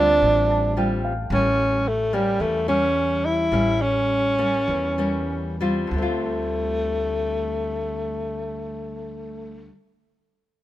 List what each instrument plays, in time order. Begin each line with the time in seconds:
Already playing: upright bass D2, nylon-string guitar D3 G3 C4 F4, tenor saxophone D4, grand piano F4 G4 C5 E5
0.22 upright bass A1, nylon-string guitar A2
0.50 grand piano A5
0.77 nylon-string guitar G3 C4 F4, grand piano G5
1.04 grand piano F5
1.30 upright bass A1, nylon-string guitar A2 G3 A#3 C#4, tenor saxophone C#4
1.88 tenor saxophone A3
2.13 nylon-string guitar G3 A#3 C#4, tenor saxophone G3
2.40 upright bass E2, nylon-string guitar E3, tenor saxophone A3
2.68 nylon-string guitar G3 A#3 C#4, tenor saxophone C#4
3.26 tenor saxophone E4
3.52 upright bass A1, nylon-string guitar A2 G3 A#3 C#4
3.82 tenor saxophone C#4
4.38 nylon-string guitar G3 A#3 C#4
4.68 upright bass E2, nylon-string guitar E3
4.98 nylon-string guitar G3 A#3 C#4
5.61 nylon-string guitar G3 C4 F4
5.87 nylon-string guitar D3
5.91 upright bass D2, nylon-string guitar G3, tenor saxophone A3
5.98 nylon-string guitar C4
6.02 nylon-string guitar F4